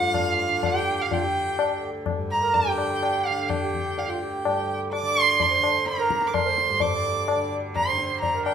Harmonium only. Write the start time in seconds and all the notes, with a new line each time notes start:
Already playing: F4
0.73 G4
1.10 F4
1.22 G4
2.42 A#4
2.66 G4
3.62 G4
4.08 F4
4.21 G4
5.03 D5
5.51 C5
5.99 A#4
6.46 C5
6.95 D5
7.87 C5
8.35 A#4